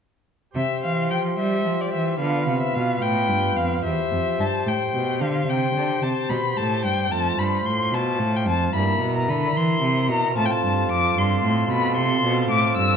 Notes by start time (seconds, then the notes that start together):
0.53 C3 G4 C5 E5
0.83 E3 F5
1.10 F3 G5
1.37 G3 E5
1.65 F3
1.81 D5
1.93 E3 E5
2.16 B3 F4 B4 F5
2.20 D3
2.47 C3
2.61 E5
2.74 B2 F5
3.01 A2 G5
3.28 G2
3.56 F2 F5
3.82 E2 G4 C5 E5
4.12 F2
4.39 G2 A5
4.66 A2 G5
4.94 B2
5.21 D3 F5
5.47 C3 G5
5.75 D3
6.02 C3 A5
6.29 B2 B5
6.56 A2 A5
6.84 G2 G5
7.07 A3 F4 C5
7.11 F2 A5
7.38 G2 B5
7.65 A2 C6
7.92 B2 A5
8.19 A2
8.36 G5
8.47 F2 A5
8.70 G2 A#3 E4 A#4
8.75 G2 B5
9.01 B2
9.17 A#5
9.28 D3 B5
9.55 E3 C6
9.82 C3
10.09 B2 A#5
10.33 A2 C4 F4 A4
10.37 A2 A5
10.45 G5
10.51 A5
10.63 G2
10.89 F2 D6
11.16 G2 C6
11.43 A2
11.70 B2 B5
11.97 C3 C6
12.23 B2
12.50 A2 D6
12.77 G2 E6